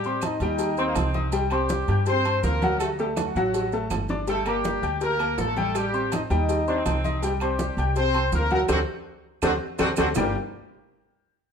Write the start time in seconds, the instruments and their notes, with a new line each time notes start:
Already playing: upright bass A2, horn section G3 G4
0.04 grand piano C4 C5 C6, high conga, maracas
0.21 horn section D#4 D#5, cowbell, high conga, low timbale, low agogo, claves, maracas
0.40 upright bass D#2, grand piano G3 G4 G5, horn section D#4 D#5, low agogo, maracas
0.59 cowbell, high conga, low agogo, maracas
0.77 grand piano C4 C5 C6, saxophone section C4, high conga, maracas
0.88 saxophone section A#3
0.95 upright bass C2, saxophone section C4, cowbell, high conga, low timbale, low agogo, claves, maracas
1.14 grand piano D#4 D#5 D#6, cowbell, high conga, maracas
1.32 grand piano G3 G4 G5, cowbell, low agogo, maracas
1.50 horn section G3 G4, grand piano C4 C5 C6, high conga, low agogo, claves, maracas
1.69 cowbell, high conga, low timbale, maracas
1.88 upright bass G2, grand piano G4 G5 G6, high conga, low agogo, maracas
2.06 horn section C4 C5, cowbell, high conga, low agogo, maracas
2.25 grand piano C4 C5 C6, high conga, low agogo, claves, maracas
2.43 upright bass D2, horn section A#3 A#4, cowbell, high conga, low timbale, maracas
2.62 grand piano F#3 F#4 F#5, high conga, low agogo, maracas
2.79 horn section A3 A4, cowbell, low agogo, claves, maracas
2.98 horn section G3 G4, grand piano A3 A4 A5, high conga, maracas
3.16 horn section F#3 F#4, cowbell, high conga, low timbale, low agogo, claves, maracas
3.35 upright bass A1, grand piano F#3 F#4 F#5, high conga, low agogo, maracas
3.54 cowbell, high conga, low agogo, maracas
3.72 grand piano A3 A4 A5, high conga, maracas
3.90 upright bass G1, cowbell, high conga, low timbale, low agogo, claves, maracas
4.08 grand piano D4 D5 D6, cowbell, high conga, maracas
4.27 grand piano G3 G4 G5, horn section A3 A4, cowbell, high conga, low agogo, maracas
4.46 horn section G3 G4, grand piano A#3 A#4 A#5, high conga, low agogo, claves, maracas
4.64 cowbell, high conga, low timbale, maracas
4.82 upright bass D2, grand piano G4 G5 G6, high conga, low agogo, maracas
5.01 horn section A#3 A#4, cowbell, high conga, low agogo, maracas
5.19 grand piano A#3 A#4 A#5, high conga, low agogo, claves, maracas
5.38 upright bass A1, horn section A3 A4, cowbell, high conga, low timbale, maracas
5.57 grand piano G3 G4 G5, high conga, low agogo, maracas
5.75 horn section G3 G4, cowbell, high conga, low agogo, claves, maracas
5.94 grand piano C4 C5 C6, high conga, maracas
6.12 horn section D#4 D#5, cowbell, high conga, low timbale, low agogo, claves, maracas
6.30 upright bass D#2, grand piano G3 G4 G5, horn section D#4 D#5, high conga, low agogo, maracas
6.49 cowbell, high conga, low agogo, maracas
6.68 grand piano C4 C5 C6, saxophone section D4, high conga, maracas
6.77 saxophone section C4
6.86 upright bass C2, saxophone section C4, cowbell, high conga, low timbale, low agogo, claves, maracas
7.04 grand piano D#4 D#5 D#6, cowbell, high conga, maracas
7.22 grand piano G3 G4 G5, cowbell, low agogo, maracas
7.40 horn section G3 G4, grand piano C4 C5 C6, high conga, low agogo, claves, maracas
7.59 cowbell, high conga, low timbale, maracas
7.77 upright bass C2, grand piano G4 G5 G6, high conga, low agogo, maracas
7.96 horn section C4 C5, cowbell, high conga, low agogo, maracas
8.14 grand piano C4 C5 C6, high conga, low agogo, claves, maracas
8.32 upright bass D2, horn section A#3 A#4, cowbell, high conga, low timbale, maracas
8.50 grand piano F#3 F#4 F#5, horn section A#4, high conga, low agogo, maracas
8.54 horn section A#3
8.68 upright bass D2, horn section F#3 C4 D4 F#4, saxophone section A3 C4 D4, grand piano A4 C5 D5, cowbell, high conga, high timbale, claves, maracas
9.42 upright bass D2, horn section F#3 C4 D4 F#4, saxophone section A3 C4 D4, grand piano A4 C5 D5, cowbell, high conga, high timbale, claves, maracas
9.78 upright bass D2, horn section F#3 C4 D4 F#4, saxophone section A3 C4 D4, grand piano A4 C5 D5, cowbell, high conga, high timbale, claves, maracas
9.96 upright bass D2, horn section F#3 C4 D4 F#4, saxophone section A3 C4 D4, grand piano A4 C5 D5, cowbell, high conga, high timbale, claves, maracas
10.15 upright bass G1, grand piano G3 D4 G4 A#4 D5 G5, horn section G3 G4, saxophone section A#3, low bongo, low conga, low timbale, claves, maracas